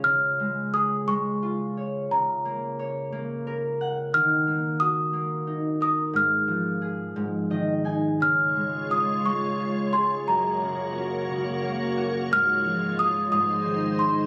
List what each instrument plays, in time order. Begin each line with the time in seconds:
Already playing: harp C#4 D#4 F4 G#4
0.04 harp C#3, celesta F6
0.40 harp G#3
0.74 harp G#4, celesta D#6
1.08 harp G#3, celesta C#6
1.42 harp F4
1.77 harp C#5
2.11 harp C#3, celesta A#5
2.45 harp A#3
2.79 harp C#5
3.12 harp A#3
3.47 harp A#4
3.81 harp F#5
4.14 harp D#3, celesta F6
4.47 harp A#3
4.80 harp F#4, celesta D#6
5.13 harp A#3
5.47 harp D#4
5.81 harp A#4, celesta D#6
6.13 harp G#2, celesta F6
6.48 harp F3
6.82 harp G#4
7.16 harp G#2
7.50 harp D#3 D#5
7.84 harp D#4 G#5
8.20 harp C#3, ambient pad G#3 F4 C#5, celesta F6
8.55 harp G#3
8.90 harp F4, celesta D#6
9.24 harp G#3, celesta C#6
9.59 harp C#4
9.93 harp G#4, celesta C6
10.28 harp F#2, ambient pad A#3 F#4 C#5, celesta A#5
10.61 harp C#3
10.95 harp C#4
11.29 harp C#3
11.64 harp A#3
11.98 harp F#4
12.31 harp G#2, ambient pad G#3 F4, celesta F6
12.65 harp F3
12.99 harp F4, celesta D#6
13.32 harp G#2, ambient pad D#4 C5, celesta D#6
13.65 harp D#3
13.99 harp D#4, celesta C6